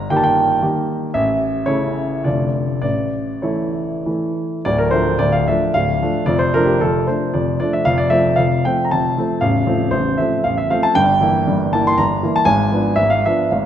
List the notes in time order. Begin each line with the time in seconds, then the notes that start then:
Already playing: G1 A#5
0.10 D#3 A#3 G4 G5
0.17 A5
0.24 G5
0.62 D#3 A#3 G4
1.14 A1 E5
1.66 C#3 A3 E4 C#5
2.24 F1 D3 A3 F4 D5
2.82 A1 D5
3.42 E3 A3 E4 C#5
4.06 E3 A3 E4
4.65 D1 D2 D5
4.78 A#4
4.91 F3 A3 D4 C5
5.19 D1 D2 D5
5.32 F5
5.48 F3 A3 D4 E5
5.74 D1 D2 F5
6.02 F3 A3 D4
6.26 F1 F2 D5
6.39 C5
6.54 F3 A3 D4 A#4
6.65 G4
6.81 F1 F2 A4
7.07 F3 A3 D4 C5
7.34 F1 F2 D5
7.60 F3 A3 D4 D5
7.73 E5
7.85 F1 F2 F5
7.98 D5
8.10 F3 A3 C4 E5
8.36 F1 F2 F5
8.65 F3 A3 C4 G5
8.85 A#5
8.91 F1 F2 A5
9.17 F3 A3 C4
9.41 A0 A1 F5
9.66 F3 A3 C4
9.91 A0 A1 C5
10.18 F3 A3 C4 E5
10.44 A0 A1 F5
10.58 E5
10.70 F3 A3 C4 F5
10.83 A5
10.95 G1 G2 G5
11.21 E3 A#3 E4
11.47 G1 G2
11.73 E3 A#3 E4 A5
11.87 C6
11.97 G1 G2 A#5
12.23 E3 A#3 E4
12.36 A5
12.45 G#1 G#2 G#5
12.71 F3 B3 D4
12.96 G#1 G#2 E5
13.10 F5
13.26 F3 B3 D4 E5
13.51 G#1 G#2 F5